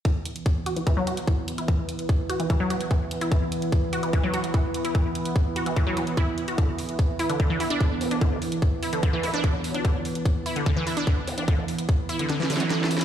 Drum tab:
HH |x-----x--x--x-----x--x--x-----x--x--x-----x--x--|x-----x--x--x-----x--x--x-----x--x--x-----x--x--|x-----x--x--x-----x--x--x-----x--x--x-----x--x--|x-----x--x--x-----x--x--x-----x--x--x-----x--x--|
SD |------------------------------------------------|------------------------------------------------|------------------------------------------------|------------------------------------------------|
BD |o-----------o-----------o-----------o-----------|o-----------o-----------o-----------o-----------|o-----------o-----------o-----------o-----------|o-----------o-----------o-----------o-----------|

HH |x-----o--x--x-----o--x--x-----o--x--x-----o--x--|x-----o--x--x-----o--x--x-----o--x--x-----o--x--|x-----o--x--x-----o--x--x-----o--x--x-----o--x--|x-----o--x--x-----o--x--x-----o--x--x-----o--x--|
SD |------------------------------------------------|------------------------------------------------|------------------------------------------------|------------------------o---o---o---o---o---o---|
BD |o-----------o-----------o-----------o-----------|o-----------o-----------o-----------o-----------|o-----------o-----------o-----------o-----------|o-----------o-----------------------------------|